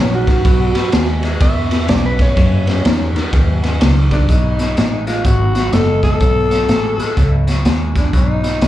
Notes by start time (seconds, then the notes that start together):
Already playing: A#1 F#2 D#3 C#5
0.15 F#4
0.27 F#2 D#3, kick, snare, ride
0.45 B1 B2 F#3, kick, snare, ride
0.75 B2 F#3, snare, ride
0.92 D#2 B2 G#3, snare, ride
1.23 B2 G#3, snare, ride
1.40 E2 B2 E5, kick, snare, ride
1.71 E2 B2, snare, ride
1.88 B1 E2 C#3 D5, snare, ride
2.06 B4
2.19 E2 C#3 C#5, kick, snare, ride
2.37 F#2 C#3, kick, snare, ride
2.67 F#2 C#3, snare, ride
2.84 E2 F#2 D#3, snare, ride
3.15 F#2 D#3, muted fingered electric bass stroke, snare, ride
3.33 D#2 F#2 C#3, kick, snare, ride
3.62 F#2 C#3, snare, ride
3.80 C#2 F#2 D#3, snare, ride
4.11 F#2 D#3 D4, kick, snare, ride
4.29 B1 B2 F#3 D#4, kick, snare, closed hi-hat
4.59 B2 F#3, snare, closed hi-hat
4.77 A1 B2 G#3, snare, closed hi-hat
5.07 B2 G#3 F4, snare, closed hi-hat
5.24 G#1 B2 F#3 F#4, kick, snare, closed hi-hat
5.55 B2 F#3, snare, closed hi-hat
5.73 F#1 B2 G#3 A4, snare, closed hi-hat
6.03 B2 G#3 A4, kick, snare, closed hi-hat
6.20 B1 B2 F#3, kick, snare, closed hi-hat
6.50 B2 F#3, snare, closed hi-hat
6.68 A1 B2 G#3, snare, closed hi-hat
6.99 B2 G#3, muted fingered electric bass stroke, snare, closed hi-hat
7.17 C#2 B2 F#3, kick, snare, closed hi-hat
7.47 B2 F#3, snare, closed hi-hat
7.65 D#2 B2 G#3, snare, closed hi-hat
7.96 B2 G#3 D4, kick, snare, closed hi-hat
8.13 B1 B2 F#3 D4, kick, snare, closed hi-hat
8.28 D#4
8.43 B2 F#3, snare, closed hi-hat
8.61 C#2 B2 G#3, snare, closed hi-hat